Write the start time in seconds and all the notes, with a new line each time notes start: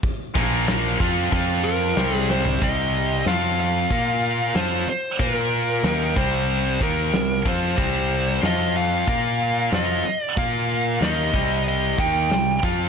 0.03 kick, open hi-hat
0.35 A#1 A#2 F3 A#3, kick, open hi-hat
0.68 snare, open hi-hat
1.00 F2 F3 C4 F4, kick, open hi-hat
1.31 F2 F3 C4 F4, kick, open hi-hat
1.64 A#4, open hi-hat
1.96 C2 C3 G3 C4, snare, open hi-hat
2.14 G#4
2.30 C5, snare
2.46 floor tom
2.62 C2 C3 G3 C4 D#5, kick, open hi-hat
3.26 F2 F3 C4 F4 F5, snare, open hi-hat
3.61 F5
3.90 A#2 A#3 F4 A#4, kick, open hi-hat
4.55 F2 F3 C4 F4 C5, snare, open hi-hat
4.87 C5, muted overdriven electric guitar stroke, muted distorted electric guitar stroke, muted fingered electric bass stroke
5.19 A#2 A#3 F4 A#4, kick, open hi-hat
5.83 D#2 D#3 A#3 D#4, snare, open hi-hat
6.16 C2 C3 G3 C4 C5, kick
6.49 open hi-hat
6.80 D#2 D#3 A#3 D#4 A#4, kick
7.12 C2 C3 G3, snare, open hi-hat
7.45 F2 F3 C4 F4 C5, kick
7.77 C2 C3 G3 C4, kick, open hi-hat
8.41 F2 F3 C4 F4, snare, open hi-hat
8.46 D#5
8.77 F5
9.07 A#2 A#3 F4 A#4 F5, kick, open hi-hat
9.72 F2 F3 C4 F4 D#5, snare, open hi-hat
10.05 muted distorted electric guitar stroke, muted fingered electric bass stroke, muted overdriven electric guitar stroke
10.21 D5
10.37 A#2 A#3 F4 A#4 F5, kick, open hi-hat
11.01 D#2 D#3 A#3 D#4 D#5, snare, open hi-hat
11.34 C2 C3 G3 C4, kick
11.66 D#5, open hi-hat
11.98 D#2 D#3 A#3 D#4 G5, kick
12.30 C2 C3 G3, snare, open hi-hat
12.63 F2 F3 C4 F4 F5, kick